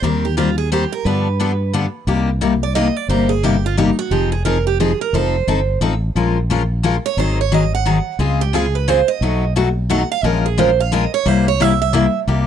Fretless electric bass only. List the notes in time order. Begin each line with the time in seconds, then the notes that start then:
0.02 D#2
1.05 G2
2.07 C2
3.08 G1
4.11 F1
5.13 F1
5.47 G1
5.81 A1
6.15 A#1
7.17 G#1
8.19 C#2
9.21 B1
10.23 A#1
11.26 C2
12.27 C2